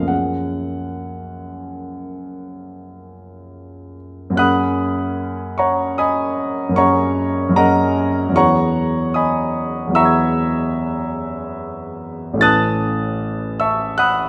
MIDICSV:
0, 0, Header, 1, 2, 480
1, 0, Start_track
1, 0, Key_signature, 6, "major"
1, 0, Tempo, 875912
1, 56, Time_signature, 5, 2, 24, 8
1, 1017, Tempo, 846262
1, 2457, Tempo, 792602
1, 5337, Tempo, 802139
1, 6777, Tempo, 864553
1, 7257, Tempo, 785340
1, 8399, End_track
2, 0, Start_track
2, 0, Title_t, "Grand piano"
2, 0, Program_c, 0, 0
2, 0, Control_c, 0, 64, 127
2, 0, Note_on_c, 0, 37, 39
2, 0, Note_on_c, 0, 42, 35
2, 0, Note_on_c, 0, 53, 27
2, 0, Note_on_c, 0, 57, 35
2, 0, Note_on_c, 0, 59, 32
2, 0, Note_on_c, 0, 61, 35
2, 0, Note_on_c, 0, 69, 33
2, 0, Note_on_c, 0, 75, 68
2, 0, Note_on_c, 0, 77, 70
2, 4, Note_on_c, 0, 58, 29
2, 19, Note_off_c, 0, 61, 0
2, 19, Note_on_c, 0, 61, 26
2, 37, Note_on_c, 0, 68, 28
2, 42, Note_on_c, 0, 78, 65
2, 69, Control_c, 0, 64, 0
2, 70, Note_off_c, 0, 69, 0
2, 72, Note_off_c, 0, 57, 0
2, 72, Note_off_c, 0, 77, 0
2, 73, Note_off_c, 0, 37, 0
2, 74, Note_off_c, 0, 75, 0
2, 75, Note_off_c, 0, 59, 0
2, 171, Control_c, 0, 64, 127
2, 2212, Note_off_c, 0, 78, 0
2, 2389, Note_off_c, 0, 42, 0
2, 2399, Note_off_c, 0, 53, 0
2, 2404, Note_on_c, 0, 42, 54
2, 2407, Note_off_c, 0, 58, 0
2, 2411, Note_on_c, 0, 54, 41
2, 2415, Note_off_c, 0, 61, 0
2, 2422, Note_on_c, 0, 58, 44
2, 2424, Note_off_c, 0, 68, 0
2, 2434, Note_on_c, 0, 61, 46
2, 2444, Note_on_c, 0, 68, 43
2, 2445, Note_on_c, 0, 90, 90
2, 2452, Note_on_c, 0, 83, 73
2, 2453, Note_on_c, 0, 78, 60
2, 2455, Note_on_c, 0, 87, 71
2, 2468, Control_c, 0, 64, 0
2, 2580, Control_c, 0, 64, 127
2, 3160, Note_off_c, 0, 83, 0
2, 3161, Note_off_c, 0, 78, 0
2, 3161, Note_off_c, 0, 87, 0
2, 3173, Note_on_c, 0, 85, 68
2, 3180, Note_on_c, 0, 82, 63
2, 3181, Note_off_c, 0, 90, 0
2, 3181, Note_on_c, 0, 78, 60
2, 3183, Note_on_c, 0, 73, 57
2, 3406, Note_off_c, 0, 78, 0
2, 3406, Note_off_c, 0, 82, 0
2, 3407, Note_off_c, 0, 73, 0
2, 3417, Note_on_c, 0, 87, 74
2, 3419, Note_off_c, 0, 85, 0
2, 3422, Note_on_c, 0, 75, 60
2, 3422, Note_on_c, 0, 80, 64
2, 3422, Note_on_c, 0, 83, 61
2, 3838, Note_off_c, 0, 42, 0
2, 3847, Note_on_c, 0, 42, 50
2, 3850, Note_off_c, 0, 54, 0
2, 3859, Note_off_c, 0, 58, 0
2, 3860, Note_on_c, 0, 54, 40
2, 3866, Note_off_c, 0, 61, 0
2, 3869, Note_on_c, 0, 58, 42
2, 3871, Note_off_c, 0, 68, 0
2, 3876, Note_off_c, 0, 75, 0
2, 3876, Note_off_c, 0, 80, 0
2, 3876, Note_off_c, 0, 83, 0
2, 3878, Note_on_c, 0, 61, 43
2, 3889, Note_on_c, 0, 68, 40
2, 3891, Note_on_c, 0, 85, 84
2, 3898, Note_off_c, 0, 87, 0
2, 3899, Note_on_c, 0, 78, 64
2, 3899, Note_on_c, 0, 82, 63
2, 3901, Note_on_c, 0, 73, 65
2, 4322, Note_off_c, 0, 42, 0
2, 4331, Note_off_c, 0, 54, 0
2, 4332, Note_on_c, 0, 42, 59
2, 4340, Note_on_c, 0, 54, 45
2, 4341, Note_off_c, 0, 58, 0
2, 4350, Note_on_c, 0, 58, 48
2, 4353, Note_off_c, 0, 61, 0
2, 4357, Note_off_c, 0, 78, 0
2, 4357, Note_off_c, 0, 82, 0
2, 4358, Note_off_c, 0, 73, 0
2, 4361, Note_off_c, 0, 68, 0
2, 4362, Note_on_c, 0, 61, 44
2, 4373, Note_on_c, 0, 68, 46
2, 4376, Note_on_c, 0, 82, 94
2, 4377, Note_off_c, 0, 85, 0
2, 4383, Note_on_c, 0, 70, 71
2, 4383, Note_on_c, 0, 75, 66
2, 4383, Note_on_c, 0, 78, 72
2, 4811, Note_off_c, 0, 54, 0
2, 4812, Note_on_c, 0, 40, 48
2, 4820, Note_off_c, 0, 42, 0
2, 4821, Note_on_c, 0, 54, 44
2, 4829, Note_off_c, 0, 58, 0
2, 4833, Note_on_c, 0, 59, 43
2, 4835, Note_off_c, 0, 61, 0
2, 4836, Note_off_c, 0, 70, 0
2, 4836, Note_off_c, 0, 78, 0
2, 4837, Note_off_c, 0, 75, 0
2, 4841, Note_off_c, 0, 68, 0
2, 4845, Note_on_c, 0, 64, 39
2, 4855, Note_on_c, 0, 68, 41
2, 4856, Note_off_c, 0, 82, 0
2, 4857, Note_on_c, 0, 85, 94
2, 4862, Note_on_c, 0, 78, 72
2, 4865, Note_on_c, 0, 73, 64
2, 4865, Note_on_c, 0, 82, 70
2, 4872, Control_c, 0, 64, 0
2, 4955, Control_c, 0, 64, 127
2, 5314, Note_off_c, 0, 78, 0
2, 5316, Note_off_c, 0, 73, 0
2, 5316, Note_off_c, 0, 82, 0
2, 5332, Note_on_c, 0, 87, 69
2, 5336, Note_off_c, 0, 85, 0
2, 5340, Note_on_c, 0, 75, 56
2, 5341, Note_on_c, 0, 80, 55
2, 5342, Note_on_c, 0, 83, 60
2, 5760, Note_off_c, 0, 40, 0
2, 5769, Note_on_c, 0, 40, 51
2, 5772, Note_off_c, 0, 54, 0
2, 5779, Note_off_c, 0, 59, 0
2, 5781, Note_on_c, 0, 54, 39
2, 5785, Note_off_c, 0, 64, 0
2, 5790, Note_off_c, 0, 68, 0
2, 5791, Note_on_c, 0, 59, 41
2, 5794, Note_off_c, 0, 75, 0
2, 5794, Note_off_c, 0, 80, 0
2, 5795, Note_off_c, 0, 83, 0
2, 5802, Note_on_c, 0, 64, 40
2, 5811, Note_on_c, 0, 68, 38
2, 5814, Note_off_c, 0, 87, 0
2, 5816, Note_on_c, 0, 88, 88
2, 5820, Note_on_c, 0, 76, 70
2, 5820, Note_on_c, 0, 82, 66
2, 5822, Note_on_c, 0, 78, 39
2, 5822, Note_on_c, 0, 85, 65
2, 5840, Note_on_c, 0, 83, 39
2, 5876, Note_on_c, 0, 92, 33
2, 7209, Note_on_c, 0, 33, 52
2, 7212, Note_off_c, 0, 40, 0
2, 7217, Note_on_c, 0, 57, 47
2, 7218, Note_off_c, 0, 54, 0
2, 7223, Note_off_c, 0, 59, 0
2, 7228, Note_off_c, 0, 64, 0
2, 7231, Note_on_c, 0, 61, 43
2, 7232, Note_off_c, 0, 68, 0
2, 7236, Note_off_c, 0, 76, 0
2, 7236, Note_off_c, 0, 82, 0
2, 7237, Note_off_c, 0, 78, 0
2, 7237, Note_off_c, 0, 85, 0
2, 7240, Note_on_c, 0, 64, 41
2, 7245, Note_off_c, 0, 83, 0
2, 7250, Note_on_c, 0, 93, 99
2, 7251, Note_on_c, 0, 71, 41
2, 7256, Note_off_c, 0, 88, 0
2, 7257, Note_on_c, 0, 90, 81
2, 7259, Note_on_c, 0, 81, 81
2, 7259, Note_on_c, 0, 87, 79
2, 7263, Note_off_c, 0, 92, 0
2, 7268, Control_c, 0, 64, 0
2, 7365, Control_c, 0, 64, 127
2, 7961, Note_off_c, 0, 90, 0
2, 7962, Note_off_c, 0, 81, 0
2, 7962, Note_off_c, 0, 87, 0
2, 7975, Note_on_c, 0, 88, 82
2, 7981, Note_off_c, 0, 93, 0
2, 7981, Note_on_c, 0, 76, 59
2, 7982, Note_on_c, 0, 81, 53
2, 7982, Note_on_c, 0, 85, 63
2, 8201, Note_off_c, 0, 76, 0
2, 8201, Note_off_c, 0, 81, 0
2, 8201, Note_off_c, 0, 85, 0
2, 8208, Note_on_c, 0, 90, 94
2, 8214, Note_off_c, 0, 88, 0
2, 8215, Note_on_c, 0, 78, 65
2, 8216, Note_on_c, 0, 83, 66
2, 8217, Note_on_c, 0, 87, 69
2, 8399, Note_off_c, 0, 33, 0
2, 8399, Note_off_c, 0, 57, 0
2, 8399, Note_off_c, 0, 61, 0
2, 8399, Note_off_c, 0, 64, 0
2, 8399, Note_off_c, 0, 71, 0
2, 8399, Note_off_c, 0, 78, 0
2, 8399, Note_off_c, 0, 83, 0
2, 8399, Note_off_c, 0, 87, 0
2, 8399, Note_off_c, 0, 90, 0
2, 8399, End_track
0, 0, End_of_file